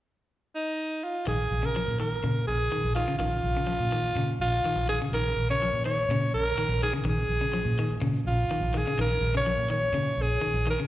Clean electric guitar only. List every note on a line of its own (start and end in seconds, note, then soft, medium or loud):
1.27 1.39 D#3 medium
1.63 1.69 C#3 medium
1.76 1.88 F3 medium
2.00 2.12 D#3 medium
2.24 2.36 C#3 medium
2.72 2.84 D#3 medium
2.96 3.03 D#3 medium
3.08 3.14 C#3 medium
3.20 3.32 D#3 medium
3.57 3.63 C#3 medium
3.67 3.79 F3 medium
3.92 4.05 D#3 medium
4.17 4.29 C#3 medium
4.65 4.78 D#3 medium
4.89 4.95 D#3 medium
5.02 5.08 C#3 medium
5.14 5.26 D#3 medium
5.51 5.56 C#3 medium
5.62 5.74 F3 medium
5.86 5.98 D#3 medium
6.11 6.23 C#3 medium
6.58 6.70 D#3 medium
6.83 6.89 D#3 medium
6.93 7.00 C#3 medium
7.05 7.17 D#3 medium
7.41 7.47 C#3 medium
7.54 7.66 F3 medium
7.79 7.91 D#3 medium
8.01 8.14 C#3 medium
8.51 8.63 D#3 medium
8.74 8.81 D#3 medium
8.87 8.93 C#3 medium
8.99 9.11 D#3 medium
9.35 9.41 C#3 medium
9.46 9.59 F3 medium
9.70 9.83 D#3 medium
9.94 10.07 C#3 medium
10.41 10.54 D#3 medium
10.67 10.73 D#3 medium
10.80 10.86 C#3 medium